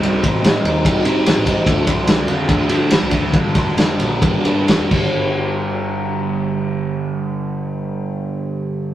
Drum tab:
CC |--------|--------|-------x|--------|
RD |xxxxxxxx|xxxxxxxx|xxxxxxx-|--------|
SD |--o---o-|--o---o-|--o---o-|--------|
BD |-o--o--o|oo--o--o|oo--o--o|--------|

CC |--------|
RD |--------|
SD |--------|
BD |--------|